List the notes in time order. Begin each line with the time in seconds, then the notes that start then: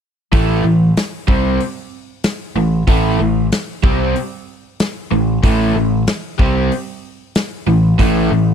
0.32 A1 A2 E3 A3, kick, open hi-hat
0.64 A1 A2 E3
0.97 snare, open hi-hat
1.28 C2 C3 G3 C4, kick
1.60 open hi-hat
2.24 snare, open hi-hat
2.56 A1 A2 E3
2.87 A1 A2 E3 A3, kick, open hi-hat
3.19 A1 A2 E3
3.52 snare, open hi-hat
3.83 C2 C3 G3 C4, kick
4.16 open hi-hat
4.79 snare, open hi-hat
5.11 A1 A2 E3
5.43 A1 A2 E3 A3, kick, open hi-hat
5.74 A1 A2 E3
6.07 snare, open hi-hat
6.38 C2 C3 G3 C4, kick
6.72 open hi-hat
7.35 snare, open hi-hat
7.67 A1 A2 E3
7.99 A1 A2 E3 A3, kick, open hi-hat
8.31 A1 A2 E3